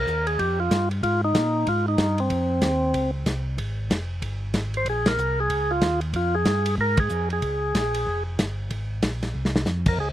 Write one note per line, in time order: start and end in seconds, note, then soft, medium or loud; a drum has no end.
0.00 0.27 A#4 medium
0.07 0.38 D#2 medium
0.07 hi-hat pedal medium
0.27 0.39 G#4 medium
0.27 ride soft
0.39 0.70 F2 medium
0.39 0.59 G4 loud
0.39 kick soft
0.39 ride medium
0.60 0.89 F4 medium
0.71 1.02 G2 medium
0.71 kick soft
0.71 snare medium
0.71 hi-hat pedal medium
0.71 ride medium
0.91 ride soft
1.03 1.34 G#2 medium
1.03 1.21 F4 medium
1.03 kick soft
1.03 ride medium
1.24 1.69 D#4 medium
1.35 1.65 A#2 medium
1.35 kick soft
1.35 snare medium
1.35 hi-hat pedal medium
1.35 ride medium
1.66 1.97 G#2 medium
1.66 1.86 F4 medium
1.66 kick soft
1.66 ride medium
1.88 2.20 D#4 medium
1.98 2.29 G2 medium
1.98 kick soft
1.98 snare medium
1.98 hi-hat pedal soft
1.98 ride medium
2.18 3.11 C4 medium
2.18 ride soft
2.30 2.61 F2 medium
2.30 kick soft
2.30 ride medium
2.62 2.93 D#2 medium
2.62 kick soft
2.62 snare medium
2.62 hi-hat pedal medium
2.62 ride medium
2.94 3.25 C#2 medium
2.94 kick soft
2.94 ride medium
3.26 3.57 C2 medium
3.26 kick soft
3.26 snare medium
3.26 hi-hat pedal medium
3.26 ride medium
3.58 3.89 G#1 medium
3.58 kick soft
3.58 ride medium
3.90 4.21 F1 medium
3.90 kick soft
3.90 snare medium
3.90 hi-hat pedal medium
3.90 ride medium
4.22 4.53 G1 medium
4.22 kick soft
4.22 ride medium
4.54 4.85 G#1 medium
4.54 kick soft
4.54 snare medium
4.54 hi-hat pedal soft
4.54 ride medium
4.74 4.88 C5 medium
4.74 ride soft
4.86 5.17 A#1 medium
4.86 5.08 G#4 medium
4.86 kick soft
4.86 ride medium
5.06 5.40 A#4 medium
5.06 snare medium
5.06 ride medium
5.17 5.49 C2 medium
5.17 hi-hat pedal medium
5.40 5.72 G#4 medium
5.50 5.81 C#2 medium
5.50 kick soft
5.50 ride medium
5.71 6.00 F4 medium
5.81 6.13 D#2 medium
5.81 kick soft
5.81 snare medium
5.81 hi-hat pedal medium
5.81 ride medium
6.01 ride soft
6.14 6.45 F2 medium
6.14 6.36 F4 medium
6.14 kick soft
6.14 ride medium
6.35 6.75 G#4 medium
6.45 6.77 G2 medium
6.45 kick soft
6.45 snare medium
6.45 hi-hat pedal soft
6.45 ride medium
6.66 ride medium
6.78 7.09 G#2 medium
6.78 7.00 A#4 loud
6.78 kick soft
6.97 7.29 G#4 medium
6.97 kick medium
6.97 ride medium
7.09 7.41 F2 medium
7.09 hi-hat pedal medium
7.30 8.23 G#4 medium
7.30 ride soft
7.42 7.73 C#2 medium
7.42 kick soft
7.42 ride medium
7.75 8.06 A#1 medium
7.75 kick soft
7.75 snare medium
7.75 hi-hat pedal medium
7.75 ride medium
7.94 ride medium
8.07 8.38 F1 medium
8.07 kick soft
8.39 8.70 G1 medium
8.39 kick soft
8.39 snare medium
8.39 hi-hat pedal medium
8.39 ride medium
8.70 9.02 G#1 medium
8.70 kick soft
8.70 ride medium
9.02 9.34 A#1 medium
9.02 kick soft
9.02 snare medium
9.02 hi-hat pedal soft
9.02 ride medium
9.23 snare soft
9.23 ride soft
9.35 9.65 C2 medium
9.45 snare medium
9.56 snare medium
9.66 9.97 F2 medium
9.66 snare medium
9.66 hi-hat pedal soft
9.86 9.99 A#4 medium
9.86 kick medium
9.86 crash medium
9.98 10.12 C#2 medium
9.98 10.09 G#4 medium
9.98 kick soft